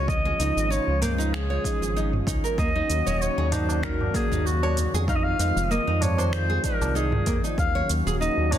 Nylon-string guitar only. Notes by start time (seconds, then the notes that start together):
0.25 G#4
0.39 D#4
0.70 D#4
1.02 A#3
1.18 D#4
1.50 C#5
1.65 D#4
1.82 G#4
1.96 D#4
2.27 D#4
2.44 A#4
2.59 A#3
2.75 D#4
3.06 C#5
3.38 G#4
3.52 D#4
3.83 D#4
4.15 A#3
4.31 D#4
4.63 C#5
4.94 G#4
5.09 D#4
5.40 D#4
5.71 A#3
5.87 D#4
6.18 C5
6.50 G#4
6.64 D#4
6.95 D#4
7.27 A#3
7.44 D#4
7.75 C#5
8.07 G#4
8.21 D#4
8.52 D#4